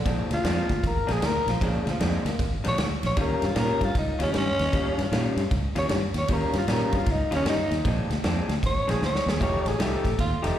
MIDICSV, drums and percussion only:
0, 0, Header, 1, 2, 480
1, 0, Start_track
1, 0, Tempo, 389610
1, 71, Time_signature, 4, 2, 24, 8
1, 13046, End_track
2, 0, Start_track
2, 0, Title_t, "Drums"
2, 69, Note_on_c, 9, 36, 103
2, 69, Note_on_c, 9, 51, 82
2, 76, Note_on_c, 9, 38, 38
2, 192, Note_off_c, 9, 51, 0
2, 193, Note_off_c, 9, 36, 0
2, 200, Note_off_c, 9, 38, 0
2, 378, Note_on_c, 9, 51, 66
2, 385, Note_on_c, 9, 38, 28
2, 501, Note_off_c, 9, 51, 0
2, 508, Note_off_c, 9, 38, 0
2, 548, Note_on_c, 9, 51, 78
2, 556, Note_on_c, 9, 38, 96
2, 672, Note_off_c, 9, 51, 0
2, 679, Note_off_c, 9, 38, 0
2, 853, Note_on_c, 9, 51, 59
2, 855, Note_on_c, 9, 36, 73
2, 861, Note_on_c, 9, 38, 34
2, 976, Note_off_c, 9, 51, 0
2, 978, Note_off_c, 9, 36, 0
2, 984, Note_off_c, 9, 38, 0
2, 1029, Note_on_c, 9, 36, 109
2, 1031, Note_on_c, 9, 51, 79
2, 1038, Note_on_c, 9, 38, 33
2, 1152, Note_off_c, 9, 36, 0
2, 1154, Note_off_c, 9, 51, 0
2, 1162, Note_off_c, 9, 38, 0
2, 1334, Note_on_c, 9, 51, 62
2, 1342, Note_on_c, 9, 38, 36
2, 1457, Note_off_c, 9, 51, 0
2, 1465, Note_off_c, 9, 38, 0
2, 1505, Note_on_c, 9, 51, 83
2, 1512, Note_on_c, 9, 38, 102
2, 1628, Note_off_c, 9, 51, 0
2, 1635, Note_off_c, 9, 38, 0
2, 1820, Note_on_c, 9, 51, 57
2, 1827, Note_on_c, 9, 38, 36
2, 1943, Note_off_c, 9, 51, 0
2, 1950, Note_off_c, 9, 38, 0
2, 1987, Note_on_c, 9, 36, 108
2, 1991, Note_on_c, 9, 51, 80
2, 1998, Note_on_c, 9, 38, 32
2, 2111, Note_off_c, 9, 36, 0
2, 2114, Note_off_c, 9, 51, 0
2, 2121, Note_off_c, 9, 38, 0
2, 2301, Note_on_c, 9, 51, 56
2, 2308, Note_on_c, 9, 38, 31
2, 2424, Note_off_c, 9, 51, 0
2, 2431, Note_off_c, 9, 38, 0
2, 2469, Note_on_c, 9, 51, 80
2, 2477, Note_on_c, 9, 38, 103
2, 2593, Note_off_c, 9, 51, 0
2, 2600, Note_off_c, 9, 38, 0
2, 2780, Note_on_c, 9, 51, 67
2, 2788, Note_on_c, 9, 38, 34
2, 2904, Note_off_c, 9, 51, 0
2, 2911, Note_off_c, 9, 38, 0
2, 2947, Note_on_c, 9, 36, 109
2, 2949, Note_on_c, 9, 51, 80
2, 2957, Note_on_c, 9, 38, 33
2, 3070, Note_off_c, 9, 36, 0
2, 3072, Note_off_c, 9, 51, 0
2, 3080, Note_off_c, 9, 38, 0
2, 3257, Note_on_c, 9, 51, 76
2, 3265, Note_on_c, 9, 38, 35
2, 3381, Note_off_c, 9, 51, 0
2, 3388, Note_off_c, 9, 38, 0
2, 3425, Note_on_c, 9, 51, 84
2, 3432, Note_on_c, 9, 38, 106
2, 3548, Note_off_c, 9, 51, 0
2, 3555, Note_off_c, 9, 38, 0
2, 3732, Note_on_c, 9, 51, 66
2, 3740, Note_on_c, 9, 38, 34
2, 3855, Note_off_c, 9, 51, 0
2, 3863, Note_off_c, 9, 38, 0
2, 3901, Note_on_c, 9, 51, 79
2, 3905, Note_on_c, 9, 36, 113
2, 3908, Note_on_c, 9, 38, 33
2, 4024, Note_off_c, 9, 51, 0
2, 4029, Note_off_c, 9, 36, 0
2, 4031, Note_off_c, 9, 38, 0
2, 4212, Note_on_c, 9, 51, 56
2, 4220, Note_on_c, 9, 38, 30
2, 4336, Note_off_c, 9, 51, 0
2, 4343, Note_off_c, 9, 38, 0
2, 4381, Note_on_c, 9, 51, 81
2, 4389, Note_on_c, 9, 38, 106
2, 4505, Note_off_c, 9, 51, 0
2, 4512, Note_off_c, 9, 38, 0
2, 4695, Note_on_c, 9, 36, 72
2, 4696, Note_on_c, 9, 51, 67
2, 4703, Note_on_c, 9, 38, 31
2, 4818, Note_off_c, 9, 36, 0
2, 4819, Note_off_c, 9, 51, 0
2, 4827, Note_off_c, 9, 38, 0
2, 4865, Note_on_c, 9, 51, 84
2, 4866, Note_on_c, 9, 36, 100
2, 4873, Note_on_c, 9, 38, 34
2, 4989, Note_off_c, 9, 51, 0
2, 4990, Note_off_c, 9, 36, 0
2, 4996, Note_off_c, 9, 38, 0
2, 5170, Note_on_c, 9, 51, 74
2, 5178, Note_on_c, 9, 38, 37
2, 5294, Note_off_c, 9, 51, 0
2, 5301, Note_off_c, 9, 38, 0
2, 5342, Note_on_c, 9, 51, 75
2, 5350, Note_on_c, 9, 38, 107
2, 5466, Note_off_c, 9, 51, 0
2, 5473, Note_off_c, 9, 38, 0
2, 5657, Note_on_c, 9, 51, 53
2, 5665, Note_on_c, 9, 38, 36
2, 5781, Note_off_c, 9, 51, 0
2, 5788, Note_off_c, 9, 38, 0
2, 5827, Note_on_c, 9, 51, 86
2, 5829, Note_on_c, 9, 36, 109
2, 5835, Note_on_c, 9, 38, 31
2, 5951, Note_off_c, 9, 51, 0
2, 5952, Note_off_c, 9, 36, 0
2, 5958, Note_off_c, 9, 38, 0
2, 6142, Note_on_c, 9, 51, 62
2, 6149, Note_on_c, 9, 38, 36
2, 6265, Note_off_c, 9, 51, 0
2, 6272, Note_off_c, 9, 38, 0
2, 6315, Note_on_c, 9, 51, 77
2, 6322, Note_on_c, 9, 38, 107
2, 6438, Note_off_c, 9, 51, 0
2, 6445, Note_off_c, 9, 38, 0
2, 6621, Note_on_c, 9, 51, 58
2, 6628, Note_on_c, 9, 38, 34
2, 6744, Note_off_c, 9, 51, 0
2, 6751, Note_off_c, 9, 38, 0
2, 6791, Note_on_c, 9, 36, 117
2, 6792, Note_on_c, 9, 51, 76
2, 6799, Note_on_c, 9, 38, 35
2, 6914, Note_off_c, 9, 36, 0
2, 6915, Note_off_c, 9, 51, 0
2, 6922, Note_off_c, 9, 38, 0
2, 7093, Note_on_c, 9, 51, 75
2, 7100, Note_on_c, 9, 38, 40
2, 7216, Note_off_c, 9, 51, 0
2, 7223, Note_off_c, 9, 38, 0
2, 7259, Note_on_c, 9, 51, 83
2, 7266, Note_on_c, 9, 38, 99
2, 7382, Note_off_c, 9, 51, 0
2, 7390, Note_off_c, 9, 38, 0
2, 7566, Note_on_c, 9, 51, 66
2, 7573, Note_on_c, 9, 38, 33
2, 7689, Note_off_c, 9, 51, 0
2, 7697, Note_off_c, 9, 38, 0
2, 7740, Note_on_c, 9, 51, 87
2, 7747, Note_on_c, 9, 38, 32
2, 7748, Note_on_c, 9, 36, 107
2, 7863, Note_off_c, 9, 51, 0
2, 7871, Note_off_c, 9, 38, 0
2, 7872, Note_off_c, 9, 36, 0
2, 8050, Note_on_c, 9, 51, 68
2, 8058, Note_on_c, 9, 38, 33
2, 8173, Note_off_c, 9, 51, 0
2, 8181, Note_off_c, 9, 38, 0
2, 8227, Note_on_c, 9, 51, 79
2, 8234, Note_on_c, 9, 38, 92
2, 8350, Note_off_c, 9, 51, 0
2, 8357, Note_off_c, 9, 38, 0
2, 8531, Note_on_c, 9, 51, 64
2, 8536, Note_on_c, 9, 36, 82
2, 8538, Note_on_c, 9, 38, 34
2, 8654, Note_off_c, 9, 51, 0
2, 8659, Note_off_c, 9, 36, 0
2, 8661, Note_off_c, 9, 38, 0
2, 8701, Note_on_c, 9, 51, 72
2, 8708, Note_on_c, 9, 36, 100
2, 8708, Note_on_c, 9, 38, 33
2, 8824, Note_off_c, 9, 51, 0
2, 8831, Note_off_c, 9, 36, 0
2, 8832, Note_off_c, 9, 38, 0
2, 9017, Note_on_c, 9, 51, 70
2, 9024, Note_on_c, 9, 38, 38
2, 9140, Note_off_c, 9, 51, 0
2, 9147, Note_off_c, 9, 38, 0
2, 9188, Note_on_c, 9, 51, 73
2, 9195, Note_on_c, 9, 38, 104
2, 9311, Note_off_c, 9, 51, 0
2, 9319, Note_off_c, 9, 38, 0
2, 9503, Note_on_c, 9, 51, 55
2, 9510, Note_on_c, 9, 38, 34
2, 9626, Note_off_c, 9, 51, 0
2, 9634, Note_off_c, 9, 38, 0
2, 9671, Note_on_c, 9, 36, 114
2, 9672, Note_on_c, 9, 51, 80
2, 9680, Note_on_c, 9, 38, 34
2, 9794, Note_off_c, 9, 36, 0
2, 9796, Note_off_c, 9, 51, 0
2, 9803, Note_off_c, 9, 38, 0
2, 9985, Note_on_c, 9, 51, 49
2, 9992, Note_on_c, 9, 38, 30
2, 10108, Note_off_c, 9, 51, 0
2, 10115, Note_off_c, 9, 38, 0
2, 10150, Note_on_c, 9, 51, 65
2, 10157, Note_on_c, 9, 38, 99
2, 10273, Note_off_c, 9, 51, 0
2, 10281, Note_off_c, 9, 38, 0
2, 10463, Note_on_c, 9, 51, 60
2, 10470, Note_on_c, 9, 38, 34
2, 10586, Note_off_c, 9, 51, 0
2, 10593, Note_off_c, 9, 38, 0
2, 10631, Note_on_c, 9, 36, 111
2, 10638, Note_on_c, 9, 51, 79
2, 10645, Note_on_c, 9, 38, 33
2, 10754, Note_off_c, 9, 36, 0
2, 10761, Note_off_c, 9, 51, 0
2, 10769, Note_off_c, 9, 38, 0
2, 10948, Note_on_c, 9, 51, 69
2, 10956, Note_on_c, 9, 38, 39
2, 11072, Note_off_c, 9, 51, 0
2, 11079, Note_off_c, 9, 38, 0
2, 11117, Note_on_c, 9, 38, 55
2, 11240, Note_off_c, 9, 38, 0
2, 11278, Note_on_c, 9, 38, 71
2, 11401, Note_off_c, 9, 38, 0
2, 11440, Note_on_c, 9, 38, 105
2, 11563, Note_off_c, 9, 38, 0
2, 11592, Note_on_c, 9, 36, 107
2, 11597, Note_on_c, 9, 51, 83
2, 11604, Note_on_c, 9, 38, 34
2, 11715, Note_off_c, 9, 36, 0
2, 11720, Note_off_c, 9, 51, 0
2, 11727, Note_off_c, 9, 38, 0
2, 11899, Note_on_c, 9, 51, 63
2, 11906, Note_on_c, 9, 38, 31
2, 12022, Note_off_c, 9, 51, 0
2, 12030, Note_off_c, 9, 38, 0
2, 12070, Note_on_c, 9, 51, 80
2, 12077, Note_on_c, 9, 38, 96
2, 12193, Note_off_c, 9, 51, 0
2, 12201, Note_off_c, 9, 38, 0
2, 12376, Note_on_c, 9, 36, 76
2, 12379, Note_on_c, 9, 51, 63
2, 12387, Note_on_c, 9, 38, 34
2, 12499, Note_off_c, 9, 36, 0
2, 12502, Note_off_c, 9, 51, 0
2, 12510, Note_off_c, 9, 38, 0
2, 12551, Note_on_c, 9, 36, 102
2, 12551, Note_on_c, 9, 51, 76
2, 12558, Note_on_c, 9, 38, 33
2, 12674, Note_off_c, 9, 36, 0
2, 12674, Note_off_c, 9, 51, 0
2, 12681, Note_off_c, 9, 38, 0
2, 12860, Note_on_c, 9, 51, 80
2, 12868, Note_on_c, 9, 38, 41
2, 12984, Note_off_c, 9, 51, 0
2, 12991, Note_off_c, 9, 38, 0
2, 13046, End_track
0, 0, End_of_file